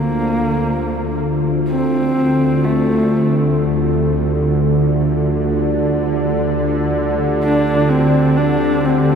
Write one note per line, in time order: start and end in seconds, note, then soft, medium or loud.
0.00 9.15 D2 medium
0.00 9.15 D3 medium
0.00 1.17 A#3 medium
0.00 9.15 F4 medium
0.00 9.15 G4 medium
0.00 9.15 A4 medium
0.00 4.07 C5 medium
1.69 2.66 C4 medium
2.64 3.36 A3 medium
3.79 9.15 D5 medium
7.43 7.90 D4 medium
7.89 8.38 C4 medium
8.36 8.86 D4 medium
8.85 9.15 C4 medium